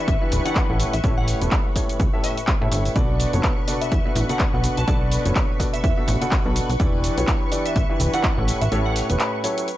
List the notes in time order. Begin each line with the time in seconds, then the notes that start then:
Already playing: B4 C#6
0.08 A1 E5, kick, closed hi-hat, shaker
0.22 E3 D4 E4 G4 B4 E5
0.32 D1, open hi-hat, shaker
0.45 E3 D4 E4 G4 B4 F#5, closed hi-hat, shaker
0.55 kick, clap, closed hi-hat, shaker
0.69 A1 A2 C#4 E4 G4 A4 F#5
0.80 open hi-hat, shaker
0.93 A1 E5, closed hi-hat, shaker
1.04 A1 A2 C#4 E4 G4 A4 C#5, kick, closed hi-hat, shaker
1.18 F#5
1.28 open hi-hat, shaker
1.41 E1 A2 C#4 E4 G4 A4 B4, closed hi-hat, shaker
1.51 kick, clap, closed hi-hat, shaker
1.76 A2 C#4 E4 G4 A4 C#5, kick, open hi-hat, shaker
1.89 closed hi-hat, shaker
2.00 C#2, kick, closed hi-hat, shaker
2.13 A2 C#4 E4 G4 A4 E5
2.24 E5, open hi-hat, shaker
2.37 closed hi-hat, shaker
2.47 kick, clap, closed hi-hat, shaker
2.61 A2 C#4 E4 G4 A4 E5
2.72 G1, open hi-hat, shaker
2.85 open hi-hat, shaker
2.96 B1 B2 D4 F#4 A4 B4 D5 C#6, kick, closed hi-hat, shaker
3.20 open hi-hat, shaker
3.33 F#1 B2 D4 F#4 A4 B4 C#5, closed hi-hat, shaker
3.43 kick, clap, closed hi-hat, shaker
3.68 B2 D4 F#4 A4 B4 D5, open hi-hat, shaker
3.81 E5, closed hi-hat, shaker
3.92 E2 E5, kick, closed hi-hat, shaker
4.05 B2 D4 F#4 A4 B4 E5
4.16 A1, open hi-hat, shaker
4.29 B2 D4 F#4 A4 B4 F#5, closed hi-hat, shaker
4.39 kick, clap, closed hi-hat, shaker
4.53 B1 B2 D4 F#4 A4 B4 F#5
4.64 open hi-hat, shaker
4.77 B1 A5, closed hi-hat, shaker
4.87 B1 B2 D4 F#4 A4 B4 D5 A5, kick, closed hi-hat, shaker
5.12 open hi-hat, shaker
5.25 F#1 B2 D4 F#4 A4 B4 C#5, closed hi-hat, shaker
5.35 kick, clap, closed hi-hat, shaker
5.60 B2 D4 F#4 A4 B4 D5, kick, open hi-hat, shaker
5.73 E5, closed hi-hat, shaker
5.84 E2 E5, kick, closed hi-hat, shaker
5.97 B2 D4 F#4 A4 B4 E5
6.08 A1, open hi-hat, shaker
6.21 B2 D4 F#4 A4 B4 F#5, closed hi-hat, shaker
6.31 kick, clap, closed hi-hat, shaker
6.46 B1 B2 D4 F#4 A4 B4 F#5
6.56 open hi-hat, shaker
6.70 B1, open hi-hat, shaker
6.80 E1 E3 D4 E4 G4 B4 D5, kick, closed hi-hat, shaker
7.04 open hi-hat, shaker
7.18 B1 E3 D4 E4 G4 B4 C#5, closed hi-hat, shaker
7.27 kick, clap, closed hi-hat, shaker
7.52 E3 D4 E4 G4 B4 D5, open hi-hat, shaker
7.66 E5, closed hi-hat, shaker
7.76 A1 E5, kick, closed hi-hat, shaker
7.89 E3 D4 E4 G4 B4 E5
8.00 D1, open hi-hat, shaker
8.14 E3 D4 E4 G4 B4 F#5, closed hi-hat, shaker
8.23 kick, clap, closed hi-hat, shaker
8.38 A1 A2 C#4 E4 G4 A4 F#5
8.48 open hi-hat, shaker
8.62 A1 E5, closed hi-hat, shaker
8.72 A1 A2 C#4 E4 G4 A4 C#5, closed hi-hat, shaker
8.86 F#5
8.96 open hi-hat, shaker
9.10 E1 A2 C#4 E4 G4 A4 B4, closed hi-hat, shaker
9.19 clap, closed hi-hat, shaker
9.44 F#3 C#4 E4 G4 A4 C#5, open hi-hat, shaker
9.58 closed hi-hat, shaker
9.68 closed hi-hat, shaker